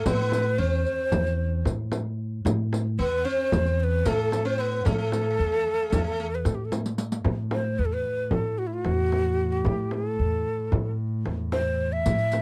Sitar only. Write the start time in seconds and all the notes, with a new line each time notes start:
0.06 B3
0.13 B3
0.21 B3
0.28 B3
0.35 B3
0.42 B3
0.58 C4
2.99 B3
3.25 C4
4.05 A3
4.45 C4
4.58 B3
4.85 A3
4.94 A3
4.98 A3
5.06 A3
5.14 A3
5.21 A3
5.30 A3
5.37 A3
5.46 A3
5.52 A3
5.59 A3
5.67 A3
5.74 A3
5.82 A3
5.90 A3
5.97 A3
6.04 A3
6.12 A3
6.20 A3